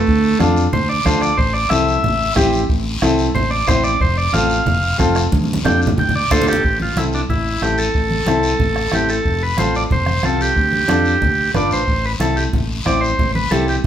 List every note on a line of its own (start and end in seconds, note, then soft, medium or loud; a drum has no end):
0.00 0.39 A3 loud
0.07 0.34 D2 medium
0.07 bombo low medium
0.07 high conga soft
0.07 long guiro medium
0.39 0.66 F2 loud
0.39 0.63 D4 medium
0.39 0.63 F4 medium
0.39 0.63 A4 medium
0.39 bombo rim medium
0.39 high conga medium
0.39 short guiro medium
0.57 short guiro medium
0.72 0.99 D2 medium
0.72 0.89 C5 medium
0.72 high conga soft
0.72 low conga medium
0.72 long guiro medium
0.89 1.05 D5 medium
1.05 1.32 D2 medium
1.05 1.28 D4 medium
1.05 1.29 F4 medium
1.05 1.29 A4 medium
1.05 1.22 C5 medium
1.05 bombo low medium
1.05 bombo rim medium
1.05 high conga medium
1.05 short guiro medium
1.22 1.38 D5 medium
1.22 bombo rim medium
1.22 short guiro medium
1.37 1.64 A1 loud
1.37 1.54 C5 medium
1.37 bombo low medium
1.37 high conga soft
1.37 long guiro medium
1.53 1.70 D5 medium
1.69 1.97 C2 loud
1.69 1.94 C4 medium
1.69 1.94 E4 medium
1.69 1.94 A4 medium
1.69 2.34 E5 loud
1.69 bombo rim medium
1.69 high conga medium
1.69 short guiro medium
1.88 short guiro medium
2.03 2.30 A1 medium
2.03 high conga soft
2.03 low conga medium
2.03 long guiro medium
2.35 2.63 A1 loud
2.35 2.59 C4 medium
2.35 2.59 E4 medium
2.35 2.60 G4 loud
2.35 bombo low medium
2.35 bombo rim medium
2.35 high conga medium
2.35 short guiro medium
2.53 short guiro medium
2.69 2.96 A1 medium
2.69 bombo low medium
2.69 high conga soft
2.69 long guiro medium
3.02 3.29 C2 loud
3.02 3.25 C4 medium
3.02 3.25 E4 medium
3.02 3.26 A4 loud
3.02 bombo rim medium
3.02 high conga medium
3.02 short guiro medium
3.18 short guiro medium
3.34 3.61 A1 medium
3.34 3.51 C5 medium
3.34 high conga soft
3.34 low conga medium
3.34 long guiro medium
3.50 3.67 D5 medium
3.67 3.94 A1 loud
3.67 3.91 C4 medium
3.67 3.91 E4 medium
3.67 3.84 C5 loud
3.67 3.91 C5 medium
3.67 bombo low medium
3.67 bombo rim medium
3.67 high conga medium
3.67 low conga medium
3.67 short guiro medium
3.84 4.00 D5 loud
3.84 short guiro medium
4.00 4.27 F1 loud
4.00 4.17 C5 medium
4.00 bombo low medium
4.00 high conga soft
4.00 long guiro medium
4.18 4.33 D5 medium
4.33 4.59 A1 loud
4.33 4.57 C4 medium
4.33 4.57 F4 medium
4.33 4.57 A4 medium
4.33 4.97 F5 medium
4.33 bombo rim medium
4.33 high conga medium
4.33 short guiro medium
4.50 short guiro medium
4.65 4.92 F1 medium
4.65 high conga soft
4.65 low conga medium
4.65 long guiro medium
4.98 5.26 F1 loud
4.98 5.22 C4 medium
4.98 5.22 F4 medium
4.98 5.22 A4 loud
4.98 bombo low medium
4.98 bombo rim medium
4.98 high conga medium
4.98 short guiro medium
5.15 bombo rim medium
5.15 short guiro medium
5.32 5.58 D2 loud
5.32 bombo low medium
5.32 high conga medium
5.32 long guiro medium
5.43 high conga medium
5.53 high conga medium
5.64 5.91 F2 loud
5.64 5.88 D4 medium
5.64 5.87 F4 medium
5.64 5.88 A4 medium
5.64 5.81 G5 loud
5.64 bombo rim medium
5.64 low conga loud
5.64 short guiro medium
5.82 short guiro medium
5.87 low conga loud
5.97 6.24 D2 medium
5.97 6.14 G5 medium
5.97 low conga medium
5.97 long guiro medium
6.09 low conga medium
6.16 6.31 D5 medium
6.30 6.57 D2 loud
6.30 6.54 D4 medium
6.30 6.54 F4 medium
6.30 6.54 A4 medium
6.30 6.46 A4 loud
6.30 6.47 C5 medium
6.30 bombo low medium
6.30 bombo rim medium
6.30 low conga medium
6.30 short guiro medium
6.41 low conga medium
6.47 6.78 G4 medium
6.47 6.63 A4 loud
6.47 bombo rim medium
6.47 short guiro medium
6.53 low conga medium
6.63 6.90 A1 medium
6.63 bombo low medium
6.63 high conga soft
6.63 long guiro medium
6.80 6.98 F4 medium
6.80 high conga medium
6.96 7.22 C2 medium
6.96 7.19 C4 medium
6.96 7.20 E4 medium
6.96 7.05 E4 medium
6.96 7.20 A4 medium
6.96 bombo rim medium
6.96 high conga medium
6.96 short guiro medium
7.13 7.21 D4 medium
7.13 short guiro medium
7.29 7.55 A1 medium
7.29 7.63 E4 medium
7.29 bombo low medium
7.29 high conga soft
7.29 low conga medium
7.29 long guiro medium
7.61 7.88 A1 medium
7.61 7.85 C4 medium
7.61 7.85 E4 medium
7.61 7.79 G4 medium
7.61 7.85 A4 medium
7.61 bombo rim medium
7.61 high conga medium
7.61 short guiro medium
7.78 8.96 A4 medium
7.78 short guiro medium
7.94 8.21 A1 medium
7.94 bombo low medium
7.94 high conga soft
7.94 long guiro medium
8.11 high conga medium
8.26 8.53 C2 medium
8.26 8.50 C4 medium
8.26 8.50 E4 medium
8.26 8.50 A4 medium
8.26 bombo rim medium
8.26 high conga medium
8.26 short guiro medium
8.43 short guiro medium
8.59 8.86 A1 medium
8.59 bombo low medium
8.59 high conga soft
8.59 low conga medium
8.59 long guiro medium
8.76 bombo rim medium
8.91 9.18 A1 medium
8.91 9.15 C4 medium
8.91 9.15 E4 medium
8.91 9.10 G4 medium
8.91 9.16 A4 medium
8.91 bombo rim medium
8.91 high conga medium
8.91 short guiro medium
9.09 9.43 A4 medium
9.09 short guiro medium
9.25 9.51 F1 medium
9.25 bombo low medium
9.25 high conga soft
9.25 long guiro medium
9.43 9.58 B4 medium
9.57 9.83 A1 medium
9.57 9.81 C4 medium
9.57 9.81 F4 medium
9.57 9.81 A4 medium
9.57 9.75 C5 loud
9.57 bombo rim medium
9.57 high conga medium
9.57 short guiro medium
9.75 9.83 D5 medium
9.75 short guiro medium
9.90 10.17 F1 medium
9.90 10.25 C5 medium
9.90 bombo low medium
9.90 high conga soft
9.90 low conga medium
9.90 long guiro medium
10.06 bombo rim medium
10.06 high conga medium
10.23 10.49 C2 medium
10.23 10.47 C4 medium
10.23 10.47 F4 medium
10.23 10.47 A4 medium
10.23 10.41 A4 medium
10.23 bombo rim medium
10.23 high conga medium
10.23 short guiro medium
10.41 11.52 G4 loud
10.41 short guiro medium
10.56 10.83 D2 medium
10.56 bombo low medium
10.56 high conga soft
10.56 long guiro medium
10.73 high conga medium
10.88 11.15 F2 medium
10.88 11.11 D4 medium
10.88 11.12 F4 medium
10.88 11.12 A4 medium
10.88 bombo rim medium
10.88 high conga medium
10.88 short guiro medium
11.05 short guiro medium
11.22 11.48 D2 medium
11.22 bombo low medium
11.22 high conga soft
11.22 low conga medium
11.22 long guiro medium
11.54 11.70 G1 medium
11.54 11.77 D4 medium
11.54 11.78 F4 medium
11.54 11.78 B4 medium
11.54 11.71 D5 medium
11.54 bombo rim medium
11.54 high conga medium
11.54 low conga medium
11.54 short guiro medium
11.70 11.85 A1 medium
11.70 12.06 C5 medium
11.70 short guiro medium
11.87 12.14 A1 medium
11.87 bombo low medium
11.87 high conga soft
11.87 long guiro medium
12.06 12.13 B4 medium
12.19 12.46 C2 medium
12.19 12.43 C4 medium
12.19 12.43 E4 medium
12.19 12.43 A4 medium
12.19 12.37 A4 medium
12.19 bombo rim medium
12.19 high conga medium
12.19 short guiro medium
12.36 12.44 G4 medium
12.36 short guiro medium
12.53 12.79 A1 medium
12.53 bombo low medium
12.53 high conga soft
12.53 low conga medium
12.53 long guiro medium
12.85 13.12 A1 medium
12.85 13.09 C4 medium
12.85 13.09 E4 medium
12.85 13.09 C5 medium
12.85 13.01 D5 loud
12.85 bombo low medium
12.85 bombo rim medium
12.85 high conga medium
12.85 short guiro medium
13.01 13.32 C5 medium
13.01 short guiro medium
13.18 13.45 A1 medium
13.18 bombo low medium
13.18 high conga soft
13.18 low conga medium
13.18 long guiro medium
13.35 13.52 B4 medium
13.35 high conga medium
13.51 13.77 C2 loud
13.51 13.74 C4 medium
13.51 13.74 E4 medium
13.51 13.74 G4 medium
13.51 13.66 A4 medium
13.51 bombo rim medium
13.51 high conga medium
13.51 short guiro medium
13.68 13.76 G4 medium
13.68 short guiro medium